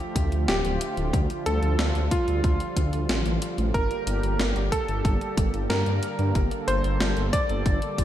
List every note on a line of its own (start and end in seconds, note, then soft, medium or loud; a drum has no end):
0.00 8.04 D3 medium
0.00 3.70 F3 medium
0.00 1.11 A3 medium
0.00 3.70 F4 medium
0.00 0.35 G4 medium
0.00 closed hi-hat soft
0.16 0.29 D2 medium
0.16 kick loud
0.16 closed hi-hat medium
0.32 0.45 D2 medium
0.32 closed hi-hat soft
0.48 0.62 D1 loud
0.48 1.33 G4 medium
0.48 snare loud
0.48 closed hi-hat medium
0.65 0.78 D1 medium
0.65 closed hi-hat soft
0.81 closed hi-hat medium
0.97 1.11 D1 medium
0.97 closed hi-hat soft
1.13 1.27 D2 loud
1.13 3.72 G3 medium
1.13 kick loud
1.13 closed hi-hat medium
1.30 closed hi-hat soft
1.46 1.60 D2 medium
1.46 2.01 A4 medium
1.46 closed hi-hat medium
1.62 1.76 D2 medium
1.62 closed hi-hat soft
1.79 1.92 D2 loud
1.79 snare loud
1.79 closed hi-hat medium
1.95 2.09 D2 medium
1.95 closed hi-hat soft
2.11 3.61 F4 medium
2.11 kick loud
2.11 closed hi-hat loud
2.28 2.41 D2 medium
2.28 closed hi-hat soft
2.44 2.57 D2 loud
2.44 kick loud
2.44 closed hi-hat medium
2.60 closed hi-hat soft
2.76 2.90 D2 medium
2.76 kick medium
2.76 closed hi-hat medium
2.93 3.06 D2 medium
2.93 closed hi-hat soft
3.09 3.23 A1 loud
3.09 snare loud
3.09 closed hi-hat medium
3.25 3.39 A1 medium
3.25 closed hi-hat soft
3.42 closed hi-hat medium
3.58 3.71 A1 medium
3.58 closed hi-hat soft
3.74 3.88 G1 loud
3.74 8.04 G3 medium
3.74 8.04 A#3 medium
3.74 6.33 G4 medium
3.74 4.59 A#4 medium
3.74 kick loud
3.74 closed hi-hat medium
3.91 closed hi-hat soft
4.07 4.20 G1 medium
4.07 closed hi-hat medium
4.23 4.37 G1 medium
4.23 closed hi-hat soft
4.39 4.53 G1 loud
4.39 snare loud
4.39 closed hi-hat medium
4.56 4.69 G1 medium
4.56 closed hi-hat soft
4.72 5.57 A4 medium
4.72 kick medium
4.72 closed hi-hat medium
4.88 5.02 G1 medium
4.88 closed hi-hat soft
5.05 5.18 G1 loud
5.05 kick loud
5.05 closed hi-hat medium
5.21 closed hi-hat soft
5.37 5.51 G1 medium
5.37 kick loud
5.37 closed hi-hat medium
5.54 5.67 G1 medium
5.54 closed hi-hat soft
5.70 5.83 G2 loud
5.70 6.55 A#4 medium
5.70 snare loud
5.70 closed hi-hat medium
5.86 6.00 G2 medium
5.86 closed hi-hat soft
6.03 closed hi-hat medium
6.19 6.32 G2 medium
6.19 closed hi-hat soft
6.35 6.49 G1 loud
6.35 8.04 A4 medium
6.35 kick loud
6.35 closed hi-hat medium
6.51 closed hi-hat soft
6.68 6.81 G1 loud
6.68 7.23 C5 medium
6.68 closed hi-hat medium
6.84 6.98 G1 medium
6.84 closed hi-hat soft
7.00 7.14 G1 loud
7.00 snare loud
7.00 closed hi-hat medium
7.17 7.30 G1 medium
7.17 closed hi-hat soft
7.33 8.04 D5 medium
7.33 kick loud
7.33 closed hi-hat medium
7.49 7.63 G1 medium
7.49 closed hi-hat soft
7.66 7.79 G1 loud
7.66 kick loud
7.66 closed hi-hat medium
7.82 closed hi-hat soft
7.98 8.04 G1 medium
7.98 kick medium
7.98 closed hi-hat medium